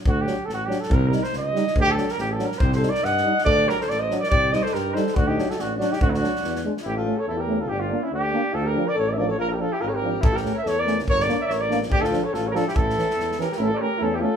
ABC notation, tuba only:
X:1
M:2/4
L:1/8
Q:"Swing 16ths" 1/4=142
K:none
V:1 name="Tuba" clef=bass
D,,2 A,,,2 | C,,2 ^C,,2 | D,,2 A,,,2 | C,,2 G,,2 |
D,,2 A,,,2 | C,,2 G,,2 | D,,2 A,,,2 | D,,2 E,,2 |
A,,,2 E,,2 | G,,,2 D,,2 | D,,2 A,,,2 | _B,,,2 ^G,,,2 |
A,,,2 E,,2 | G,,,2 A,,,2 | D,,2 A,,,2 | A,,,2 E,,2 |
A,,, z E,,2 |]